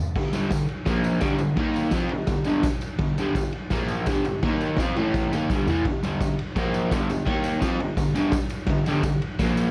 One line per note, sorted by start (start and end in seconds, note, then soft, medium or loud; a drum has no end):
0.07 tambourine soft
0.16 0.30 G2 medium
0.16 0.30 D3 medium
0.16 kick loud
0.16 snare loud
0.16 crash loud
0.33 0.50 G2 medium
0.33 0.50 D3 medium
0.33 0.51 G3 medium
0.33 ride medium
0.33 tambourine medium
0.51 0.65 G2 medium
0.51 0.66 D3 medium
0.51 kick medium
0.51 snare loud
0.51 ride medium
0.51 tambourine loud
0.69 ride medium
0.86 1.21 A#2 medium
0.86 1.22 F3 medium
0.86 1.23 A#3 medium
0.86 kick loud
0.86 snare medium
0.86 ride medium
0.86 tambourine medium
1.04 ride medium
1.04 tambourine medium
1.21 1.38 G2 medium
1.21 1.39 D3 loud
1.21 1.40 G3 loud
1.21 kick loud
1.21 snare loud
1.21 ride medium
1.21 tambourine medium
1.39 1.54 G2 medium
1.39 1.54 D3 medium
1.39 ride medium
1.39 tambourine medium
1.57 1.92 D#3 medium
1.57 1.93 A#3 medium
1.57 1.94 D#4 loud
1.57 kick loud
1.57 snare loud
1.57 ride medium
1.74 ride medium
1.74 tambourine medium
1.91 2.10 F3 medium
1.91 2.11 C4 medium
1.91 2.11 F4 loud
1.91 kick loud
1.91 snare medium
1.91 ride medium
1.91 tambourine medium
2.09 2.25 G2 medium
2.09 2.25 D3 medium
2.09 ride medium
2.27 2.43 G2 medium
2.27 2.44 D3 medium
2.27 kick loud
2.27 snare loud
2.27 ride medium
2.27 tambourine medium
2.44 2.64 G2 medium
2.44 2.64 D3 medium
2.44 2.65 G3 medium
2.44 ride medium
2.44 tambourine medium
2.63 kick loud
2.63 snare loud
2.63 ride loud
2.63 tambourine medium
2.81 ride medium
2.81 tambourine medium
2.99 3.14 G2 medium
2.99 3.14 D3 medium
2.99 kick loud
2.99 snare loud
2.99 ride loud
3.18 3.35 G2 medium
3.18 3.35 D3 medium
3.18 3.37 G3 loud
3.18 ride medium
3.18 tambourine medium
3.35 3.51 G2 medium
3.35 3.51 D3 medium
3.35 kick loud
3.35 snare medium
3.35 ride medium
3.35 tambourine medium
3.52 ride medium
3.70 4.07 A#2 medium
3.70 4.07 F3 medium
3.70 4.08 A#3 loud
3.70 kick medium
3.70 snare medium
3.70 ride medium
3.70 tambourine medium
3.88 ride medium
3.88 tambourine medium
4.06 4.24 G2 medium
4.06 4.25 D3 medium
4.06 4.26 G3 loud
4.06 kick loud
4.06 snare loud
4.06 ride medium
4.06 tambourine medium
4.25 4.40 G2 medium
4.25 4.40 D3 medium
4.25 ride medium
4.25 tambourine medium
4.43 4.78 D#3 medium
4.43 4.78 A#3 medium
4.43 4.79 D#4 medium
4.43 kick loud
4.43 snare loud
4.43 ride medium
4.43 tambourine soft
4.61 ride medium
4.61 tambourine medium
4.77 4.96 F3 medium
4.77 4.96 C4 medium
4.77 kick loud
4.77 snare loud
4.77 ride medium
4.77 tambourine medium
4.81 4.97 F4 loud
4.96 5.32 A2 medium
4.96 5.32 E3 loud
4.96 5.33 A3 medium
4.96 ride medium
4.96 tambourine soft
5.14 kick loud
5.14 snare medium
5.14 ride medium
5.14 tambourine medium
5.33 5.49 D#3 medium
5.33 5.50 A#3 medium
5.33 5.50 D#4 medium
5.33 ride medium
5.33 tambourine medium
5.50 5.67 G2 medium
5.50 5.67 D3 medium
5.50 5.68 G3 loud
5.50 kick loud
5.50 snare medium
5.50 tambourine medium
5.67 5.84 A2 medium
5.67 5.85 E3 medium
5.67 5.86 A3 loud
5.67 floor tom medium
5.67 tambourine medium
5.85 6.00 G2 medium
5.85 6.00 D3 medium
5.85 kick loud
5.85 snare loud
5.85 ride medium
6.03 6.20 G2 medium
6.03 6.21 D3 medium
6.03 6.21 G3 loud
6.03 ride medium
6.03 tambourine medium
6.21 6.35 G2 medium
6.21 6.35 D3 medium
6.21 kick loud
6.21 snare loud
6.21 ride medium
6.21 tambourine medium
6.39 ride medium
6.55 6.90 A#2 loud
6.55 6.91 F3 medium
6.55 6.91 A#3 loud
6.55 kick medium
6.55 snare loud
6.55 ride medium
6.55 tambourine medium
6.74 ride medium
6.74 tambourine medium
6.91 7.08 G2 loud
6.91 7.09 D3 medium
6.91 7.09 G3 medium
6.91 kick loud
6.91 snare loud
6.91 ride medium
6.91 tambourine loud
7.09 7.23 G2 medium
7.09 7.24 D3 medium
7.09 ride medium
7.09 tambourine medium
7.25 7.60 D#3 medium
7.25 7.61 A#3 loud
7.25 7.61 D#4 medium
7.25 kick loud
7.25 snare loud
7.25 ride medium
7.44 ride medium
7.44 tambourine medium
7.61 7.78 F3 medium
7.61 7.79 C4 loud
7.61 7.79 F4 loud
7.61 kick loud
7.61 snare loud
7.61 ride medium
7.61 tambourine loud
7.78 7.93 G2 medium
7.78 7.93 D3 medium
7.78 ride medium
7.97 8.11 G2 medium
7.97 8.11 D3 medium
7.97 kick loud
7.97 snare loud
7.97 ride medium
7.97 tambourine medium
8.15 8.32 G2 medium
8.15 8.32 D3 loud
8.15 8.33 G3 loud
8.15 ride medium
8.15 tambourine medium
8.32 kick loud
8.32 snare loud
8.32 ride medium
8.32 tambourine medium
8.49 ride medium
8.49 tambourine medium
8.66 8.82 G2 medium
8.66 8.83 D3 medium
8.66 kick loud
8.66 snare loud
8.66 ride loud
8.86 9.03 G2 medium
8.86 9.03 D3 medium
8.86 9.04 G3 loud
8.86 ride medium
8.86 tambourine medium
9.03 9.18 G2 medium
9.03 9.18 D3 medium
9.03 kick loud
9.03 snare loud
9.03 ride loud
9.03 tambourine medium
9.22 ride medium
9.39 9.71 A#2 medium
9.39 9.71 F3 medium
9.39 9.71 A#3 loud
9.39 kick loud
9.39 snare loud
9.39 ride loud
9.39 tambourine medium
9.57 ride medium
9.57 tambourine medium